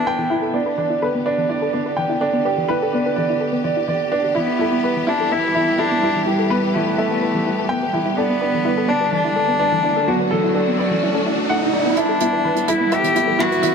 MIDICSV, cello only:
0, 0, Header, 1, 2, 480
1, 0, Start_track
1, 0, Key_signature, 1, "minor"
1, 0, Tempo, 476190
1, 550, Time_signature, 4, 2, 24, 8
1, 13858, End_track
2, 0, Start_track
2, 0, Title_t, "Cello"
2, 0, Program_c, 0, 42
2, 0, Note_on_c, 0, 62, 83
2, 313, Note_off_c, 0, 62, 0
2, 4397, Note_on_c, 0, 59, 86
2, 5129, Note_on_c, 0, 62, 80
2, 5144, Note_off_c, 0, 59, 0
2, 5360, Note_on_c, 0, 64, 92
2, 5375, Note_off_c, 0, 62, 0
2, 5833, Note_on_c, 0, 62, 93
2, 5848, Note_off_c, 0, 64, 0
2, 6312, Note_off_c, 0, 62, 0
2, 6317, Note_on_c, 0, 55, 80
2, 6792, Note_on_c, 0, 57, 70
2, 6807, Note_off_c, 0, 55, 0
2, 7991, Note_off_c, 0, 57, 0
2, 8236, Note_on_c, 0, 59, 91
2, 8958, Note_on_c, 0, 62, 88
2, 8973, Note_off_c, 0, 59, 0
2, 9194, Note_off_c, 0, 62, 0
2, 9207, Note_on_c, 0, 62, 104
2, 10158, Note_on_c, 0, 54, 80
2, 10174, Note_off_c, 0, 62, 0
2, 11595, Note_off_c, 0, 54, 0
2, 12072, Note_on_c, 0, 62, 86
2, 12791, Note_on_c, 0, 64, 79
2, 12806, Note_off_c, 0, 62, 0
2, 13045, Note_on_c, 0, 67, 96
2, 13060, Note_off_c, 0, 64, 0
2, 13510, Note_on_c, 0, 66, 94
2, 13525, Note_off_c, 0, 67, 0
2, 13858, Note_off_c, 0, 66, 0
2, 13858, End_track
0, 0, End_of_file